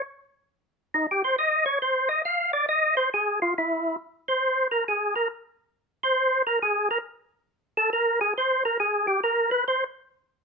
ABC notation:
X:1
M:4/4
L:1/8
Q:"Swing" 1/4=138
K:Cphr
V:1 name="Tonewheel organ"
z4 (3E G c e d | c e f =d e c A F | =E2 z c2 B A B | z3 c2 B A B |
z3 =A B _A c B | A G B =B c z3 |]